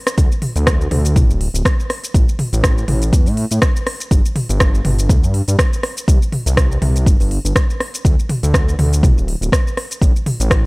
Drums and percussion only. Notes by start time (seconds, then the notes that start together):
0.07 cross-stick, closed hi-hat, shaker
0.18 kick, closed hi-hat, shaker
0.32 shaker
0.42 mid tom, open hi-hat
0.56 closed hi-hat, shaker
0.67 kick, cross-stick, closed hi-hat, shaker
0.81 shaker
0.91 mid tom, open hi-hat
1.05 closed hi-hat, shaker
1.16 kick, closed hi-hat, mid tom, shaker
1.30 shaker
1.41 open hi-hat
1.55 closed hi-hat, shaker
1.65 kick, cross-stick, closed hi-hat, shaker
1.80 shaker
1.90 cross-stick, open hi-hat
2.04 closed hi-hat, shaker
2.14 kick, closed hi-hat, shaker
2.29 shaker
2.39 mid tom, open hi-hat
2.53 closed hi-hat, shaker
2.64 kick, cross-stick, closed hi-hat, shaker
2.78 shaker
2.88 mid tom, open hi-hat
3.02 closed hi-hat, shaker
3.13 kick, closed hi-hat, shaker
3.26 open hi-hat, shaker
3.37 open hi-hat
3.51 closed hi-hat, shaker
3.62 kick, cross-stick, closed hi-hat, shaker
3.76 shaker
3.87 cross-stick, open hi-hat
4.00 closed hi-hat, shaker
4.11 kick, closed hi-hat, shaker
4.25 shaker
4.36 mid tom, open hi-hat
4.49 closed hi-hat, shaker
4.60 kick, cross-stick, closed hi-hat, shaker
4.75 shaker
4.85 mid tom, open hi-hat
4.99 closed hi-hat, shaker
5.09 kick, closed hi-hat, mid tom, shaker
5.24 shaker
5.34 open hi-hat
5.48 closed hi-hat, shaker
5.59 kick, cross-stick, closed hi-hat, shaker
5.73 shaker
5.83 cross-stick, open hi-hat
5.97 closed hi-hat, shaker
6.08 kick, closed hi-hat, shaker
6.22 shaker
6.32 mid tom, open hi-hat
6.46 closed hi-hat, shaker
6.57 kick, cross-stick, closed hi-hat, shaker
6.72 shaker
6.82 mid tom, open hi-hat
6.96 closed hi-hat, shaker
7.06 kick, closed hi-hat, shaker
7.20 open hi-hat, shaker
7.31 open hi-hat
7.45 closed hi-hat, shaker
7.56 kick, cross-stick, closed hi-hat, shaker
7.70 shaker
7.80 cross-stick, open hi-hat
7.94 closed hi-hat, shaker
8.05 kick, closed hi-hat, shaker
8.19 shaker
8.29 mid tom, open hi-hat
8.43 closed hi-hat, shaker
8.54 kick, cross-stick, closed hi-hat, shaker
8.69 shaker
8.79 mid tom, open hi-hat
8.93 closed hi-hat, shaker
9.03 kick, closed hi-hat, mid tom, shaker
9.18 shaker
9.28 open hi-hat
9.42 closed hi-hat, shaker
9.52 kick, cross-stick, closed hi-hat, shaker
9.67 shaker
9.77 cross-stick, open hi-hat
9.91 closed hi-hat, shaker
10.02 kick, closed hi-hat, shaker
10.16 shaker
10.26 mid tom, open hi-hat
10.40 closed hi-hat, shaker
10.51 kick, cross-stick, closed hi-hat, shaker